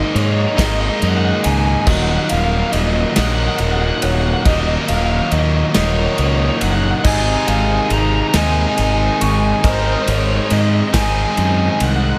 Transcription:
Already playing: G#2 D#3 G#3 A#3 D#4 D#5
0.03 D#5
0.14 G#2 G#3 C#5, ride
0.22 C#5
0.30 C#5
0.38 C#5
0.47 C#5
0.56 G#1 G#2 D#3 G#3 A#3 D#4 D#5, kick, snare, ride
0.64 D#5
0.71 D#5
0.81 D#5
0.89 D#5
0.96 D#5
1.01 F#2 G#3, ride
1.05 D#5 F#5
1.16 F#5
1.25 F#5
1.33 F#5
1.41 C#2 D#4 F#5 G#5, ride
1.50 G#5
1.58 G#5
1.64 G#5
1.73 G#5
1.80 G#5
1.86 D#1 D#2 A#2 D#3 F#3 A#3 D#4 F#4 D#5 F#5, kick, crash
1.93 F#5
2.02 F#5
2.09 F#5
2.16 F#5
2.24 F#5
2.29 D#1 F5, ride
2.37 F5
2.44 F5
2.51 F5
2.59 F5
2.67 F5
2.72 D#1 D#5, ride
2.79 D#5
2.87 D#5
2.94 D#5
3.01 D#5
3.10 D#5
3.16 A#1 D#2 A#2 D#3 F#3 A#3 D#4 D#5 F#5, snare, ride
3.24 F#5
3.33 F#5
3.39 F#5
3.47 F#5
3.55 F#5, ride
3.60 D#1 F#5
3.72 F#5
3.79 F#5
3.86 F#5
3.94 F#5
4.02 D#1 C#5 F#5, ride
4.11 F#5
4.18 F#5
4.26 F#5
4.33 F#5
4.42 D#1 D#2 A#2 D#3 D#5 F#5, kick, ride
4.47 F#3 A#3 D#4
4.52 D#5
4.60 D#5
4.67 D#5
4.75 D#5
4.82 D#5
4.88 D#1 F5, ride
4.95 F5
5.03 F5
5.10 F5
5.17 F5
5.25 F5
5.31 D#2 D#5, ride
5.39 D#5
5.47 D#5
5.55 D#5
5.64 D#5
5.74 D#1 D#2 A#2 D#3 F#3 A#3 D#4 C#5 D#5, snare, ride
5.83 C#5
5.89 C#5
5.98 C#5
6.04 C#5
6.12 C#5
6.18 C#2 C#5, ride
6.27 C#5
6.34 C#5
6.42 C#5
6.49 C#5
6.56 C#5
6.61 F#1 F#5, ride
6.71 F#5
6.76 F#5
6.83 F#5
6.91 F#5
6.98 F#5
7.04 G#1 G#2 C3 D#3 G#3 C4 D#4 G#4 D#5 G#5, kick, crash
7.14 G#5
7.21 G#5
7.29 G#5
7.37 G#5
7.47 G#1 F5 G#5, ride
7.55 G#5
7.63 G#5
7.70 G#5
7.77 G#5
7.85 G#5
7.90 G#1 A#5, ride
7.98 A#5
8.07 A#5
8.13 A#5
8.21 A#5
8.27 A#5
8.33 D#2 G#2 D#3 G#3 C4 D#4 D#5 G#5, snare, ride
8.42 G#5
8.50 G#5
8.58 G#5
8.66 G#5
8.75 G#1 G#5, ride
8.82 G#5
8.90 G#5
8.97 G#5
9.06 G#5
9.13 G#5
9.21 G#1 G#5 C#6, ride
9.29 G#5
9.37 G#5
9.44 G#5
9.52 G#5
9.60 G#1 G#2 D#3 A#4 D#5 G#5, kick
9.64 G#3 C4 D#4 C5, ride
9.72 C5
9.80 C5
9.86 C5
9.94 C5
10.02 C5
10.08 G#1 C#5, ride
10.15 C#5
10.23 C#5
10.30 C#5
10.37 C#5
10.45 C#5
10.50 G#2 D#5, ride
10.59 D#5
10.66 D#5
10.74 D#5
10.81 D#5
10.88 D#5
10.93 G#1 G#2 D#3 G#3 C4 D#4 D#5 G#5, kick, snare, ride
11.00 G#5
11.09 G#5
11.15 G#5
11.23 G#5
11.31 G#5
11.37 F#2 G#5, ride
11.46 G#5
11.52 G#5
11.60 G#5
11.68 G#5
11.75 G#5
11.80 C2 F#5, ride
11.89 F#5
11.96 F#5
12.04 F#5
12.10 F#5

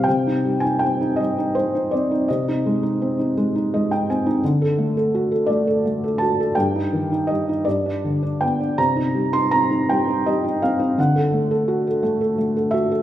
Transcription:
0.04 G5
0.08 C3
0.27 D#4
0.45 G3
0.60 D#4 G#5
0.79 G5
0.83 C4
1.01 D#4
1.16 G3 D#5
1.38 D#4
1.55 G3 C5
1.75 D#4
1.91 C4 D5
2.11 D#4
2.28 C3 D#5
2.48 D#4
2.66 G#3
2.83 D#4
3.02 C4
3.19 D#4
3.37 G#3
3.55 D#4
3.74 G#3 D#5
3.91 D#4 G5
4.10 C4 G#5
4.26 D#4
4.44 D3
4.62 A4
4.78 A3
4.97 A4
5.15 F#4
5.32 A4
5.46 A3 D5
5.67 A4
5.86 A3
6.04 A4
6.18 F#4 A5
6.40 A4
6.55 G2 G5
6.75 D#4
6.93 D#3
7.12 D#4
7.27 G3 D#5
7.49 D#4
7.65 G2 D5
7.86 D4
8.05 D3
8.23 D4
8.41 B3 G5
8.60 D4
8.78 C3 A#5
8.96 D#4
9.15 G3
9.33 D#4 C6
9.51 C4 A#5
9.71 D#4
9.89 G3 G5
10.08 D#4
10.26 G3 D#5
10.45 D#4
10.62 C4 F5
10.79 D#4
10.98 D3 F#5
11.15 A4
11.33 A3
11.51 A4
11.68 F#4
11.87 A4
12.03 A3
12.21 A4
12.38 A3
12.57 A4
12.71 F#4 E5
12.91 A4

